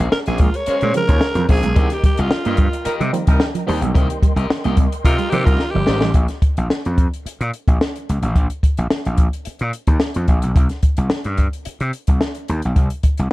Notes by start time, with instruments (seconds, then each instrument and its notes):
Already playing: clav C#3 F3 G#3 C4, tonewheel organ G#4 A#4 A#5
0.00 clean electric guitar C#4 G#4 C5, closed hi-hat
0.12 tenor saxophone A#4, muted clean electric guitar stroke, snare
0.26 slap bass A#1, clean electric guitar A#3 G#4 C5, tenor saxophone G#4, closed hi-hat
0.30 clean electric guitar C#4
0.38 clean electric guitar G#3, tenor saxophone F4, muted clean electric guitar stroke, kick, closed hi-hat
0.54 tenor saxophone C#5, muted clean electric guitar stroke, closed hi-hat
0.66 horn section G#3 C#4 F4 C#5, clean electric guitar C#4 G#4 C5, muted slap bass stroke, muted clean electric guitar stroke, closed hi-hat
0.81 slap bass A#2, clean electric guitar G#3, closed hi-hat
0.94 clav C#3 F3 G#3 C4, clean electric guitar F3, tenor saxophone A#4, muted clean electric guitar stroke, closed hi-hat
1.08 slap bass D#2, horn section G#3 C#4 F4 C#5, kick, closed hi-hat
1.21 muted clean electric guitar stroke, snare
1.35 slap bass F2, clean electric guitar F3, closed hi-hat
1.49 slap bass A#1, clav C#3 F3 G#3 C4, clean electric guitar C#4 G#4 C5, tenor saxophone G#4, muted clean electric guitar stroke, kick, open hi-hat
1.63 slap bass B1, clean electric guitar G#3, muted clean electric guitar stroke, closed hi-hat
1.75 slap bass C2, clav D#3 G3 A#3 C4, clean electric guitar C4 G4 A#4 D#5, tonewheel organ D#5 G5, kick, closed hi-hat
1.89 tenor saxophone G4, muted clean electric guitar stroke, snare, closed hi-hat
2.03 clean electric guitar G3, tenor saxophone G4, muted clean electric guitar stroke, kick, closed hi-hat
2.17 slap bass C2, tenor saxophone F4, clean electric guitar G4 A#4 D#5, closed hi-hat
2.30 muted clean electric guitar stroke, muted slap bass stroke, snare
2.45 slap bass G2, clean electric guitar A#3 G4 A#4 D#5, closed hi-hat
2.57 clean electric guitar G3, muted clean electric guitar stroke, kick, closed hi-hat
2.73 muted clean electric guitar stroke, closed hi-hat
2.85 horn section G3 A#3 D#4 A#4, clean electric guitar G4 A#4 D#5, muted slap bass stroke, muted clean electric guitar stroke, closed hi-hat
3.00 slap bass C3, clean electric guitar G3, closed hi-hat
3.13 clav D#3 G3 A#3 C4, clean electric guitar F3, muted clean electric guitar stroke, closed hi-hat
3.27 slap bass C2, horn section G3 A#3 D#4 A#4, muted clean electric guitar stroke, kick, closed hi-hat
3.40 muted clean electric guitar stroke, snare
3.55 clean electric guitar F3, closed hi-hat
3.67 slap bass D#2, clav D#3 G3 A#3 C4, clean electric guitar G4 A#4 D#5, muted clean electric guitar stroke, open hi-hat
3.81 slap bass B1, clean electric guitar G3, muted clean electric guitar stroke, closed hi-hat
3.95 slap bass C2, clav D3 G3 A#3 C4, clean electric guitar C4 G4 A#4 D#5, tonewheel organ C6, kick, closed hi-hat
4.10 muted clean electric guitar stroke, closed hi-hat
4.23 clean electric guitar G3, muted clean electric guitar stroke, kick, closed hi-hat
4.36 slap bass C2, clean electric guitar G4 A#4 D#5, closed hi-hat
4.50 muted slap bass stroke, muted clean electric guitar stroke, snare
4.64 slap bass C2, clean electric guitar A#3 G4 A#4 D#5, closed hi-hat
4.76 clean electric guitar G3, muted clean electric guitar stroke, kick, closed hi-hat
4.92 muted clean electric guitar stroke, closed hi-hat
5.04 slap bass C3, horn section G3 A#3 D#4 A#4, tenor saxophone F4, clean electric guitar G4 A#4 D#5, muted clean electric guitar stroke, kick, closed hi-hat
5.18 clean electric guitar G3, closed hi-hat
5.31 slap bass C3, clav D#3 G3 A#3 C4, clean electric guitar F3, tenor saxophone G4, muted clean electric guitar stroke, closed hi-hat
5.45 slap bass C2, horn section G3 A#3 D#4 A#4, tenor saxophone F4, muted clean electric guitar stroke, kick, closed hi-hat
5.59 muted clean electric guitar stroke, snare
5.71 slap bass G1, clean electric guitar F3, tenor saxophone G4
5.87 slap bass G#1, clav D#3 G3 A#3 C4, clean electric guitar G4 A#4 D#5, muted clean electric guitar stroke, snare
6.01 slap bass A1, clean electric guitar G3, muted clean electric guitar stroke, snare
6.14 slap bass A#1, kick, closed hi-hat
6.28 snare, closed hi-hat
6.42 kick, closed hi-hat
6.57 slap bass A#1, closed hi-hat
6.70 muted slap bass stroke, snare
6.85 slap bass F2, closed hi-hat
6.98 kick, closed hi-hat
7.14 closed hi-hat
7.26 muted slap bass stroke, closed hi-hat
7.41 slap bass A#2, closed hi-hat
7.54 closed hi-hat
7.68 slap bass A#1, kick, closed hi-hat
7.81 snare
7.96 closed hi-hat
8.09 slap bass C#2, closed hi-hat
8.22 slap bass A1, closed hi-hat
8.36 slap bass A#1, kick, closed hi-hat
8.50 closed hi-hat
8.63 kick, closed hi-hat
8.77 slap bass A#1, closed hi-hat
8.90 snare
9.05 slap bass A#1, closed hi-hat
9.17 kick, closed hi-hat
9.33 closed hi-hat
9.45 muted slap bass stroke, closed hi-hat
9.59 slap bass A#2, closed hi-hat
9.73 closed hi-hat
9.87 slap bass D#2, kick, closed hi-hat
10.00 snare
10.14 slap bass F2, closed hi-hat
10.28 slap bass A#1, kick, closed hi-hat
10.42 slap bass B1, closed hi-hat
10.56 slap bass C2, kick, closed hi-hat
10.69 snare, closed hi-hat
10.83 kick, closed hi-hat
10.97 slap bass C2, closed hi-hat
11.10 muted slap bass stroke, snare
11.24 slap bass G2, closed hi-hat
11.38 kick, closed hi-hat
11.53 closed hi-hat
11.65 muted slap bass stroke, closed hi-hat
11.80 slap bass C3, closed hi-hat
11.93 closed hi-hat
12.07 slap bass C2, kick, closed hi-hat
12.21 snare
12.35 closed hi-hat
12.48 slap bass D#2, closed hi-hat
12.62 slap bass B1, closed hi-hat
12.76 slap bass C2, kick, closed hi-hat
12.90 closed hi-hat
13.03 kick, closed hi-hat
13.18 slap bass C2, closed hi-hat